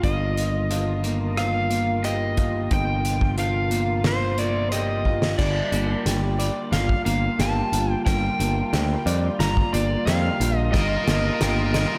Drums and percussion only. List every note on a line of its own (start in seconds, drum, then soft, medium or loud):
0.04 kick medium
0.04 closed hi-hat medium
0.37 closed hi-hat soft
0.71 closed hi-hat medium
1.04 closed hi-hat soft
1.37 cross-stick medium
1.37 closed hi-hat medium
1.71 closed hi-hat soft
2.04 closed hi-hat medium
2.37 kick medium
2.37 closed hi-hat medium
2.71 kick medium
2.71 closed hi-hat medium
3.05 closed hi-hat medium
3.21 kick medium
3.38 closed hi-hat medium
3.71 closed hi-hat soft
4.04 snare medium
4.04 closed hi-hat medium
4.38 closed hi-hat soft
4.72 closed hi-hat medium
5.05 kick soft
5.22 snare medium
5.39 kick medium
5.39 snare soft
5.39 crash medium
5.72 closed hi-hat medium
6.06 snare soft
6.06 closed hi-hat medium
6.40 closed hi-hat medium
6.73 snare soft
6.73 closed hi-hat medium
6.89 kick medium
7.06 closed hi-hat medium
7.40 snare medium
7.40 closed hi-hat medium
7.73 closed hi-hat medium
8.06 kick medium
8.06 snare medium
8.06 closed hi-hat medium
8.40 closed hi-hat medium
8.74 snare medium
8.74 closed hi-hat medium
9.07 closed hi-hat medium
9.40 snare medium
9.40 closed hi-hat medium
9.57 kick medium
9.74 closed hi-hat medium
10.07 snare medium
10.07 closed hi-hat medium
10.41 closed hi-hat medium
10.74 kick loud
10.74 snare medium
10.74 closed hi-hat medium
11.08 snare medium
11.08 closed hi-hat medium
11.41 snare medium
11.41 closed hi-hat medium
11.74 snare medium
11.74 closed hi-hat medium